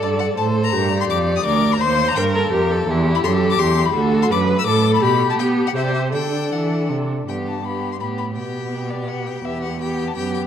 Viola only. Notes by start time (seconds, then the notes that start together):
Already playing: A4
0.37 A4
0.73 G4
1.45 A#4
1.80 C5
2.17 A#4
2.53 G4
2.89 E4
3.24 A4
3.59 G4
3.95 A4
4.31 B4
4.67 A4
5.02 G4
5.75 C5
6.14 A4
7.28 B3
7.64 B3
8.00 B3
8.37 B3
9.44 B3
9.80 B3
10.17 B3